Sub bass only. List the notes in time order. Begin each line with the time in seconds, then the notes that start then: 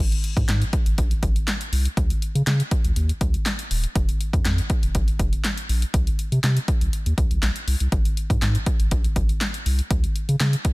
0.00 G#1
0.37 G#2
0.48 G#2
0.86 G#1
0.98 A#1
1.23 G#1
1.72 C2
1.97 C#2
2.35 C#3
2.47 C#3
2.85 C#2
2.96 D#2
3.21 C#2
3.71 D#1
3.96 F1
4.33 F2
4.45 F2
4.83 F1
4.95 G#1
5.19 F1
5.69 A#1
5.94 C2
6.32 C3
6.44 C3
6.81 C2
7.06 D#2
7.18 C2
7.31 C2
7.43 A#1
7.67 C2
7.81 C2
7.92 G#1
8.30 G#2
8.42 G#2
8.80 G#1
8.92 A#1
9.16 G#1
9.66 C2
9.91 C#2
10.29 C#3
10.40 C#3